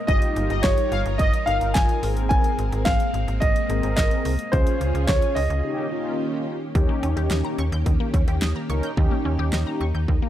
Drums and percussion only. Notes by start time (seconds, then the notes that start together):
0.08 kick, closed hi-hat
0.22 closed hi-hat
0.36 closed hi-hat
0.50 closed hi-hat
0.64 kick, snare, closed hi-hat
0.78 closed hi-hat
0.92 closed hi-hat
1.06 closed hi-hat
1.19 kick, closed hi-hat
1.34 closed hi-hat
1.47 closed hi-hat
1.61 closed hi-hat
1.75 kick, snare, clap, closed hi-hat
1.89 closed hi-hat
2.03 open hi-hat
2.17 closed hi-hat
2.31 kick, closed hi-hat
2.44 closed hi-hat
2.59 closed hi-hat
2.73 closed hi-hat
2.86 kick, snare, closed hi-hat
3.00 closed hi-hat
3.14 closed hi-hat
3.28 closed hi-hat
3.42 kick, closed hi-hat
3.56 closed hi-hat
3.70 closed hi-hat
3.83 closed hi-hat
3.97 kick, snare, clap, closed hi-hat
4.11 closed hi-hat
4.25 open hi-hat
4.39 closed hi-hat
4.53 kick, closed hi-hat
4.67 closed hi-hat
4.81 closed hi-hat
4.95 closed hi-hat
5.08 kick, snare, closed hi-hat
5.22 closed hi-hat
5.37 open hi-hat
5.50 closed hi-hat
6.75 kick, closed hi-hat
7.03 closed hi-hat
7.17 closed hi-hat
7.31 snare, closed hi-hat
7.59 closed hi-hat
7.72 closed hi-hat
7.86 kick, closed hi-hat
8.14 kick, closed hi-hat
8.28 closed hi-hat
8.42 snare, closed hi-hat
8.70 closed hi-hat
8.83 closed hi-hat
8.97 kick
9.53 snare
10.08 kick